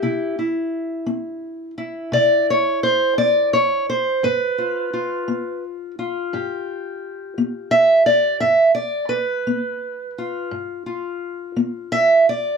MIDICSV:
0, 0, Header, 1, 2, 480
1, 0, Start_track
1, 0, Tempo, 699301
1, 23, Time_signature, 12, 3, 24, 8
1, 8630, End_track
2, 0, Start_track
2, 0, Title_t, "Steel-string acoustic guitar"
2, 0, Program_c, 0, 25
2, 0, Note_on_c, 0, 67, 109
2, 17, Note_on_c, 0, 48, 75
2, 20, Note_on_c, 0, 64, 55
2, 253, Note_off_c, 0, 67, 0
2, 257, Note_off_c, 0, 64, 0
2, 266, Note_on_c, 0, 64, 47
2, 452, Note_off_c, 0, 48, 0
2, 731, Note_on_c, 0, 60, 66
2, 1169, Note_off_c, 0, 60, 0
2, 1212, Note_off_c, 0, 64, 0
2, 1220, Note_on_c, 0, 64, 49
2, 1455, Note_on_c, 0, 48, 72
2, 1465, Note_on_c, 0, 74, 103
2, 1704, Note_off_c, 0, 74, 0
2, 1718, Note_on_c, 0, 73, 90
2, 1891, Note_off_c, 0, 48, 0
2, 1941, Note_off_c, 0, 73, 0
2, 1944, Note_on_c, 0, 72, 95
2, 2180, Note_off_c, 0, 72, 0
2, 2182, Note_on_c, 0, 60, 63
2, 2182, Note_on_c, 0, 74, 101
2, 2422, Note_off_c, 0, 74, 0
2, 2425, Note_on_c, 0, 73, 97
2, 2615, Note_off_c, 0, 60, 0
2, 2664, Note_off_c, 0, 73, 0
2, 2674, Note_on_c, 0, 72, 92
2, 2873, Note_off_c, 0, 64, 0
2, 2905, Note_on_c, 0, 43, 72
2, 2908, Note_off_c, 0, 72, 0
2, 2910, Note_on_c, 0, 71, 104
2, 3146, Note_on_c, 0, 65, 50
2, 3336, Note_off_c, 0, 43, 0
2, 3384, Note_off_c, 0, 65, 0
2, 3387, Note_on_c, 0, 65, 46
2, 3623, Note_on_c, 0, 59, 64
2, 3866, Note_off_c, 0, 71, 0
2, 4055, Note_off_c, 0, 59, 0
2, 4108, Note_off_c, 0, 65, 0
2, 4110, Note_on_c, 0, 65, 53
2, 4345, Note_on_c, 0, 43, 78
2, 4350, Note_on_c, 0, 67, 50
2, 4776, Note_off_c, 0, 43, 0
2, 5064, Note_on_c, 0, 59, 65
2, 5293, Note_on_c, 0, 76, 109
2, 5495, Note_off_c, 0, 59, 0
2, 5530, Note_off_c, 0, 76, 0
2, 5533, Note_on_c, 0, 74, 100
2, 5757, Note_off_c, 0, 65, 0
2, 5757, Note_off_c, 0, 67, 0
2, 5766, Note_off_c, 0, 74, 0
2, 5769, Note_on_c, 0, 76, 98
2, 5777, Note_on_c, 0, 43, 77
2, 6001, Note_off_c, 0, 76, 0
2, 6004, Note_on_c, 0, 74, 92
2, 6211, Note_off_c, 0, 43, 0
2, 6239, Note_on_c, 0, 71, 100
2, 6253, Note_off_c, 0, 74, 0
2, 6499, Note_on_c, 0, 59, 62
2, 6932, Note_off_c, 0, 59, 0
2, 6990, Note_on_c, 0, 65, 47
2, 7210, Note_off_c, 0, 71, 0
2, 7216, Note_on_c, 0, 43, 68
2, 7448, Note_off_c, 0, 65, 0
2, 7456, Note_on_c, 0, 65, 42
2, 7650, Note_off_c, 0, 43, 0
2, 7938, Note_on_c, 0, 59, 62
2, 8181, Note_on_c, 0, 76, 108
2, 8371, Note_off_c, 0, 59, 0
2, 8421, Note_off_c, 0, 76, 0
2, 8437, Note_on_c, 0, 74, 93
2, 8629, Note_off_c, 0, 65, 0
2, 8630, Note_off_c, 0, 74, 0
2, 8630, End_track
0, 0, End_of_file